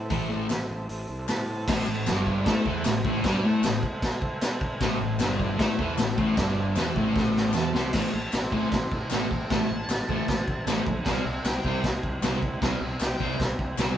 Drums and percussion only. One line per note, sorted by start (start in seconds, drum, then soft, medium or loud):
0.10 kick loud
0.10 open hi-hat medium
0.50 snare loud
0.50 clap loud
0.50 open hi-hat medium
0.89 open hi-hat soft
1.28 snare loud
1.28 clap loud
1.28 open hi-hat medium
1.68 kick loud
1.68 snare loud
1.68 crash loud
1.68 crash medium
2.07 snare loud
2.07 clap loud
2.07 crash medium
2.26 kick medium
2.46 kick loud
2.46 snare loud
2.46 crash medium
2.66 kick medium
2.85 snare loud
2.85 clap loud
2.85 crash medium
3.05 kick medium
3.24 kick loud
3.24 snare loud
3.24 crash medium
3.64 snare loud
3.64 clap loud
3.64 crash medium
3.83 kick medium
4.02 kick loud
4.02 snare loud
4.02 crash medium
4.22 kick medium
4.41 snare loud
4.41 clap medium
4.41 crash medium
4.61 kick loud
4.80 kick loud
4.80 snare loud
4.80 crash medium
5.20 snare loud
5.20 clap medium
5.20 crash medium
5.40 kick medium
5.59 kick loud
5.59 snare loud
5.59 crash medium
5.79 kick medium
5.98 snare loud
5.98 clap medium
5.98 crash medium
6.18 kick loud
6.37 kick loud
6.37 snare loud
6.37 crash medium
6.76 snare loud
6.76 clap medium
6.76 crash medium
6.96 kick medium
7.16 kick loud
7.16 snare medium
7.37 snare medium
7.54 snare loud
7.54 clap medium
7.75 snare loud
7.93 kick loud
7.93 snare loud
7.93 crash loud
7.93 crash medium
8.33 snare loud
8.33 clap loud
8.33 crash medium
8.52 kick medium
8.72 kick loud
8.72 snare loud
8.72 crash medium
8.92 kick medium
9.10 snare loud
9.10 clap loud
9.10 crash medium
9.31 kick medium
9.50 kick loud
9.50 snare loud
9.50 crash medium
9.89 snare loud
9.89 clap loud
9.89 crash medium
10.09 kick medium
10.28 kick medium
10.28 snare loud
10.28 crash medium
10.48 kick medium
10.67 snare loud
10.67 clap loud
10.67 crash medium
10.87 kick loud
11.06 kick loud
11.06 snare loud
11.06 crash medium
11.45 snare loud
11.45 clap loud
11.45 crash medium
11.65 kick medium
11.84 kick loud
11.84 snare loud
11.84 crash medium
12.03 kick medium
12.23 snare loud
12.23 clap medium
12.23 crash medium
12.42 kick medium
12.62 kick loud
12.62 snare loud
12.62 crash medium
13.00 snare loud
13.00 clap loud
13.00 crash medium
13.20 kick medium
13.40 kick loud
13.40 snare medium
13.40 crash medium
13.59 kick medium
13.78 snare loud
13.78 clap loud
13.78 crash medium